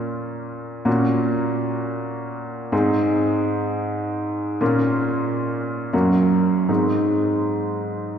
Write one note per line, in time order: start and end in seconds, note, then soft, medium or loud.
0.00 0.82 A#2 medium
0.00 0.82 A#3 soft
0.00 0.82 C#4 soft
0.00 0.82 F4 soft
0.85 2.67 A#2 medium
0.85 2.68 A#3 soft
0.85 2.68 C#4 medium
0.85 2.67 F#4 soft
2.72 4.57 G#2 medium
2.72 4.57 C4 medium
2.72 4.57 D#4 medium
2.72 4.57 G#4 soft
4.61 5.89 A#2 medium
4.61 5.89 A#3 medium
4.61 5.89 C#4 medium
4.61 5.89 F4 medium
5.93 6.67 F#2 medium
5.93 6.67 A#3 soft
5.93 6.67 C#4 medium
5.93 6.67 F#4 soft
6.68 8.19 G#2 medium
6.68 8.19 G#3 soft
6.68 8.19 C4 soft
6.68 8.19 D#4 soft